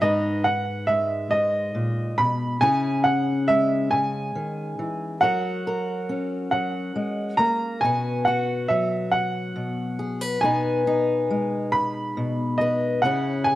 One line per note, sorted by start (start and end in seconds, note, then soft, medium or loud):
0.01 1.30 G#2 medium
0.01 0.45 D#4 medium
0.01 2.57 B4 medium
0.01 0.46 D#5 medium
0.44 0.89 F#5 medium
0.87 2.56 G#3 medium
0.87 1.32 E5 medium
1.31 1.74 G#2 soft
1.31 2.20 D#5 medium
1.75 2.18 A#2 medium
2.18 2.62 B2 medium
2.18 2.63 B5 medium
2.61 3.91 C#3 medium
2.61 5.17 C#4 medium
2.61 3.05 E4 soft
2.61 5.23 G#4 medium
2.61 3.06 G#5 medium
3.04 3.49 F#5 medium
3.48 5.17 G#3 medium
3.48 3.93 E5 medium
3.91 4.35 C#3 medium
3.91 5.17 G#5 medium
4.35 4.78 D#3 medium
4.79 5.22 E3 medium
5.21 6.52 F#3 medium
5.21 7.77 F#4 medium
5.21 5.66 A#4 medium
5.21 6.50 F#5 medium
5.67 7.78 A#4 medium
6.09 7.77 C#4 medium
6.51 6.95 F#3 medium
6.51 7.41 F#5 medium
6.96 7.39 G#3 medium
7.37 7.82 A#3 medium
7.37 7.83 A#5 medium
7.81 9.54 B2 medium
7.81 8.26 F#4 medium
7.81 8.26 G#5 medium
7.85 9.99 B4 medium
8.25 10.38 F#4 medium
8.25 8.70 F#5 medium
8.68 10.43 F#3 medium
8.68 9.13 E5 medium
9.12 10.46 F#5 medium
9.56 10.37 B2 medium
9.99 10.21 G#4 medium
10.21 10.43 B4 soft
10.41 12.16 B2 medium
10.41 13.03 B3 medium
10.41 10.86 D#4 medium
10.41 12.60 B4 medium
10.41 11.76 G#5 medium
10.87 13.04 D#4 medium
11.31 12.99 G#3 medium
11.72 12.62 B5 medium
12.17 12.98 B2 medium
12.58 12.99 B4 medium
12.58 13.04 D#5 medium
13.02 13.55 C#3 medium
13.02 13.55 C#4 medium
13.02 13.48 E4 medium
13.02 13.47 F#5 medium
13.06 13.55 G#4 medium
13.44 13.55 G#5 medium